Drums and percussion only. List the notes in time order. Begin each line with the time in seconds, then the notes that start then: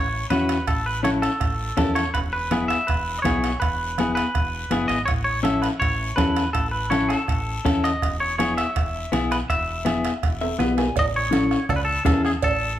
0.30 bombo rim, high conga, high timbale, short guiro
0.49 bombo rim, high timbale, short guiro
0.67 bombo low, bombo rim, high conga, high timbale, long guiro
1.04 bombo rim, high conga, high timbale, short guiro
1.23 bombo rim, high timbale, short guiro
1.40 bombo low, bombo rim, high conga, high timbale, long guiro
1.77 bombo low, bombo rim, high conga, high timbale, low timbale, short guiro
1.95 bombo rim, high timbale, short guiro
2.15 bombo low, bombo rim, high conga, high timbale, long guiro
2.51 bombo rim, high conga, high timbale, short guiro
2.70 bombo rim, high timbale, short guiro
2.88 bombo low, bombo rim, high conga, high timbale, long guiro
3.24 bombo low, bombo rim, high conga, high timbale, short guiro
3.44 bombo rim, high timbale, short guiro
3.61 bombo low, bombo rim, high conga, high timbale, long guiro
3.98 bombo rim, high conga, high timbale, short guiro
4.17 bombo rim, high timbale, short guiro
4.35 bombo low, bombo rim, high conga, high timbale, long guiro
4.71 bombo rim, high conga, high timbale, short guiro
4.89 bombo rim, high timbale, short guiro
5.07 bombo low, bombo rim, high conga, high timbale, long guiro
5.45 bombo rim, high conga, high timbale, short guiro
5.63 bombo rim, high timbale, short guiro
5.81 bombo low, bombo rim, high conga, high timbale, long guiro
6.18 bombo low, bombo rim, high conga, high timbale, low timbale, short guiro
6.36 bombo rim, high timbale, short guiro
6.55 bombo low, bombo rim, high conga, high timbale, long guiro
6.91 bombo rim, high conga, high timbale, short guiro
7.10 bombo rim, high timbale, short guiro
7.28 bombo low, bombo rim, high conga, high timbale, long guiro
7.65 bombo low, bombo rim, high conga, high timbale, short guiro
7.84 bombo rim, high timbale, short guiro
8.02 bombo low, bombo rim, high conga, high timbale, long guiro
8.39 bombo rim, high conga, high timbale, short guiro
8.58 bombo rim, high timbale, short guiro
8.76 bombo low, bombo rim, high conga, high timbale, long guiro
9.12 bombo rim, high conga, high timbale, short guiro
9.31 bombo rim, high timbale, short guiro
9.49 bombo low, bombo rim, high conga, high timbale, long guiro
9.86 bombo rim, high conga, high timbale, short guiro
10.05 bombo rim, high timbale, short guiro
10.23 bombo low, bombo rim, high conga, high timbale, long guiro
10.41 high timbale
10.59 bombo rim, high conga, low timbale, short guiro
10.78 bombo rim, low timbale, short guiro
10.96 bombo low, bombo rim, cowbell, high conga, low conga, long guiro
11.32 bombo rim, cowbell, high conga, short guiro
11.51 bombo rim, short guiro
11.69 bombo rim, cowbell, high conga, low conga, long guiro
12.05 bombo low, bombo rim, cowbell, high conga, low conga, low timbale, short guiro
12.25 bombo rim, short guiro
12.42 bombo low, bombo rim, cowbell, high conga, long guiro